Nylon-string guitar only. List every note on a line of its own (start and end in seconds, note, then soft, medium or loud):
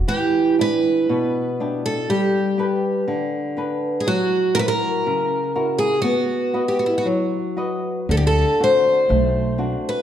0.08 1.06 E3 medium
0.59 1.39 D4 soft
0.59 1.39 E4 soft
0.59 1.39 G4 medium
1.09 2.06 B2 medium
1.60 2.00 D4 soft
1.60 2.00 E4 soft
1.60 2.00 G4 medium
2.10 3.05 G3 medium
2.58 3.37 G4 soft
2.58 3.37 A4 soft
2.58 3.37 B4 soft
3.08 4.03 D3 medium
3.57 3.96 G4 soft
3.57 3.97 A4 soft
3.57 3.97 B4 medium
4.07 5.03 F#3 medium
4.56 5.35 E4 soft
4.56 5.35 F#4 soft
4.56 5.36 A#4 medium
5.07 6.02 C#3 medium
5.56 5.95 E4 soft
5.56 5.95 F#4 soft
5.56 5.95 A#4 medium
6.04 7.02 B3 medium
6.53 7.36 F#4 soft
6.53 7.36 B4 soft
6.53 7.37 D#5 soft
7.05 8.06 F#3 soft
7.57 7.98 F#4 soft
7.57 7.98 B4 soft
7.57 7.99 D#5 soft
8.09 9.06 D3 medium
8.59 9.39 C4 soft
8.59 9.39 D4 soft
8.59 9.39 F#4 soft
9.09 10.02 A3 medium
9.58 9.98 C4 soft
9.58 9.98 D4 soft
9.58 9.98 F#4 soft